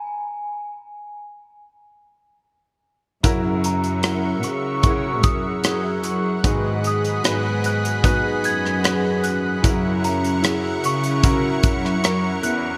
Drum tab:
HH |----------------|x-xxx-x-x-x-x-x-|x-xxx-xxx-x-x-x-|x-xxx-xxx-x-x-x-|
SD |----------------|----r-------r---|----r------rr---|----r------rr---|
BD |----------------|o-------o-o-----|o-------o-------|o-------o-o-----|